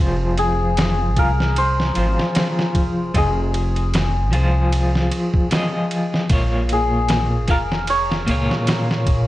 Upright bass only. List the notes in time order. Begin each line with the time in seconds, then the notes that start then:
0.00 F1
1.17 C2
1.97 G#1
2.75 F1
3.14 F1
4.33 C2
6.30 A#1
7.48 F1
8.28 C#2
9.06 A#1